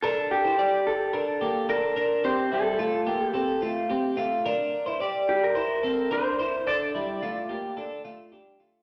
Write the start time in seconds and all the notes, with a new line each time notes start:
0.02 D4 A4 A#4
0.31 G4
0.45 E4 C5
0.59 G4 D5
0.87 A4
1.13 D4 A#4
1.41 A#3 G4
1.69 D4 A4 A#4
1.96 D4 A#4
2.24 C4 G4 C5
2.52 G3 E4 A4
2.79 A3 F4
3.07 A#3 G4
3.27 G4
3.34 C4 A4
3.62 A3 F4
3.90 C4 G4
4.17 A3 F4
4.46 D4 A#4
4.86 E4 C5
5.00 G4 D5
5.29 G4
5.43 A#4
5.55 E4 C5
5.83 C4 A4
6.11 D4 A#4 C5
6.39 E4 C5
6.67 D4 A4 D5
6.95 G3 E4
7.22 A3 F4
7.49 A#3 G4
7.77 D4 A4
8.05 A3 F4
8.32 D4 G4
8.60 A3 F4